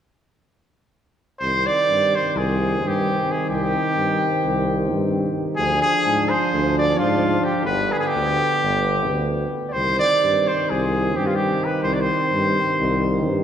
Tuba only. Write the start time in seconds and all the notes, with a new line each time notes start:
1.41 C2
1.90 G2
2.35 C2
2.84 G2
3.50 C2
3.97 G2
4.44 C2
4.93 G2
5.58 D2
6.06 G#2
6.53 D2
7.01 G#2
7.65 G1
8.15 D2
8.63 G1
9.10 D2
9.75 C2
10.24 G2
10.71 C2
11.19 G2
11.83 C2
12.32 G2
12.79 C2
13.28 G2